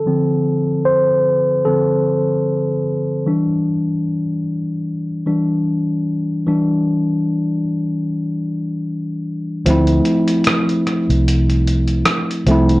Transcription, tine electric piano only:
X:1
M:4/4
L:1/8
Q:"Swing 16ths" 1/4=75
K:Dm
V:1 name="Tine electric piano"
A2 c2 A3 z | z8 | z8 | [F,A,CE]3 z4 [F,A,CE] |]
V:2 name="Tine electric piano" clef=bass
[D,F,C] z3 [D,F,C] z3 | [E,G,D]3 z2 [E,G,D] z2 | [E,G,D]3 z4 z | z8 |]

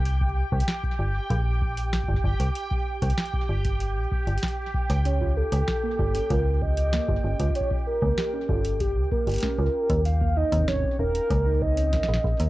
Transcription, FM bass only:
X:1
M:4/4
L:1/16
Q:1/4=96
K:Bbm
V:1 name="FM bass" clef=bass
C,,2 z C,, z2 =G,,, z B,,,4 z G,,, G,,, C,, | z3 C,, z2 =G,,,3 B,,, z G,,, z3 D,,- | D,,2 z D,, z2 =G,,, z D,,4 z G,,, G,,, D,, | z3 D,, z2 =G,,,3 D,, z G,,, z D,, z E,,- |
E,,2 z E,, z2 E,,, z D,,4 z B,,, B,,, E,, |]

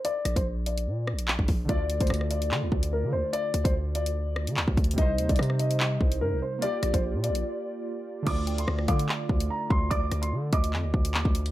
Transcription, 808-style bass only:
X:1
M:4/4
L:1/16
Q:1/4=146
K:Dphr
V:1 name="808-style bass" clef=bass
z2 B,,, B,,,4- B,,, B,,2- B,,/2 B,,,2- B,,,/2 B,,, B,,,2 | D,,3 D,, D,,4 D, D,, D,,3 D, D,, z | z2 D,, D,,8 D, D,, D,, D,,2 | C,,2 E,, C,, C,6 C,,2 G,, C,, z2 |
z2 B,,, B,,,2 B,,3/2 B,,,3/2 z8 | D,,4 D,,2 D,2 z2 D,,2 z2 D,,2 | D,,2 D,,2 D,2 D,,2 F,, D,, D,,2 E,, D,,3 |]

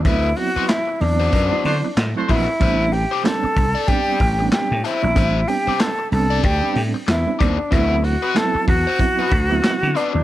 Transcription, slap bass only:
X:1
M:4/4
L:1/16
Q:"Swing 16ths" 1/4=94
K:Ador
V:1 name="Slap bass" clef=bass
D,,2 z4 E,,2 F,, z D, z A,, z _B,,, z | A,,,3 z3 C,, z3 A,,,2 z A,, z _B,,, | A,,,2 z4 C,,2 D,, z A,, z E,, z ^D,, z | D,,3 z3 E,, z3 D,,2 z D, z ^D,, |]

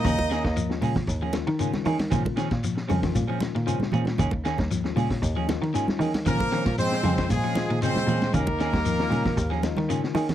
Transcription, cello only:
X:1
M:4/4
L:1/16
Q:1/4=116
K:Ebdor
V:1 name="Cello" clef=bass
E,,2 z E,,3 B,, z E,,2 z E,3 E, z | B,,2 z B,,3 F,, z B,,2 z B,,3 B,, z | E,,2 z E,,3 B,, z E,,2 z E,3 E, z | B,,2 z B,,3 F,, z B,,2 z B,,3 B,, z |
E,,2 z E,,3 B,, z E,,2 z E,3 E, z |]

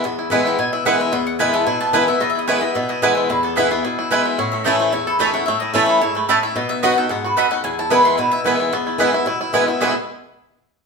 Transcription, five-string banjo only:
X:1
M:4/4
L:1/8
Q:1/4=221
K:E
V:1 name="Five-string banjo"
B, E E E B, E E E | B,2 B, E E B, E E | B, E E E B, E E E | E B, E B, E E B, E |
C A, E A, E A A, E | A, E A, A E A, C E | B, D F A B, F A D | E E B, E E E B, E |
B, E E E E E E E | [G,B,EG] z6 z |]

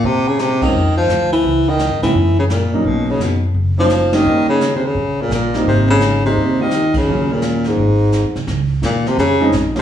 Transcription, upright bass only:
X:1
M:4/4
L:1/8
Q:"Swing" 1/4=171
K:Ab
V:1 name="Upright bass" clef=bass
B,,4 F,,2 =D,,2 | D,,2- (3D,, A,, D, _G,,3 z | =B,,,2 ^F,,2 ^F,,,4 | E,,4 B,,,2 B,,,2 |
A,,,4 E,,4 | E,,4 A,,,2- (3A,,, E,, C,, | [K:Db] D,,2 E,,2 F,,2 B,,,2 |]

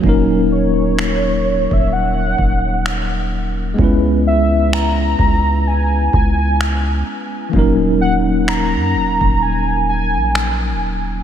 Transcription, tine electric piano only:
X:1
M:4/4
L:1/8
Q:"Swing 16ths" 1/4=64
K:D#phr
V:1 name="Tine electric piano"
[F,A,CDA]8 | [G,B,CEB]8 | [E,F,A,CDA]8 |]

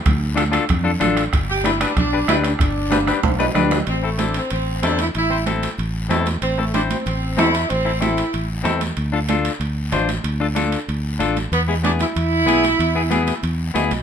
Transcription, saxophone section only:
X:1
M:4/4
L:1/8
Q:1/4=188
K:Am
V:1 name="Saxophone section"
z8 | z G E D D2 E D- | D6- D z | C A, D C C2 D E |
E2 z6 | C A, D C C2 E2 | C2 E3 z3 | z8 |
z8 | B, ^G, D E4- E- | E6 z2 |]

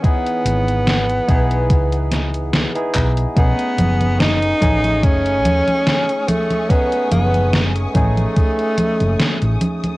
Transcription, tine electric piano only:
X:1
M:4/4
L:1/16
Q:"Swing 16ths" 1/4=72
K:Bmix
V:1 name="Tine electric piano"
[B,DEG]6 [B,DEG]6- [B,DEG] [B,DEG]3 | [A,CDG]6 [A,CDG]8- [A,CDG]2 | [A,CDG]6 [A,CDG]8- [A,CDG]2 |]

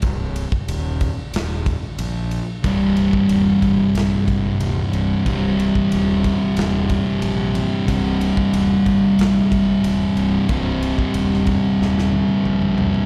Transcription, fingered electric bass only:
X:1
M:4/4
L:1/8
Q:1/4=92
K:Cm
V:1 name="Fingered electric bass" clef=bass
C,,,2 E,,,2 E,,,2 B,,,2 | C,,,2 E,,, G,,, B,,, A,,, E,,, C,,, | C,,,2 E,,,2 E,,,2 B,,,2 | C,,,2 E,,, G,,, B,,, A,,, E,,, C,,, |
C,,,2 E,,,2 E,,,2 B,,,2 |]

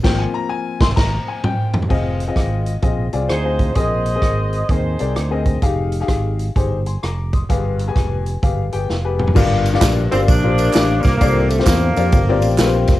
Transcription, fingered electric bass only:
X:1
M:4/4
L:1/8
Q:"Swing" 1/4=129
K:Fdor
V:1 name="Fingered electric bass" clef=bass
A,,, z2 A,,, A,,, z3 | F,,,2 A,,,2 B,,, C,, D,,2 | B,,,2 A,,,2 E,, C,, D,,2 | F,,,2 A,,,2 G,,,2 F,,,2 |
G,,,2 F,,,2 G,,, G,,, F,,,2 | [K:Gdor] G,,,2 B,,, G,,, B,,,2 A,,, C,, | C,,2 E,, F,, G,,, A,,, B,,, F,,, |]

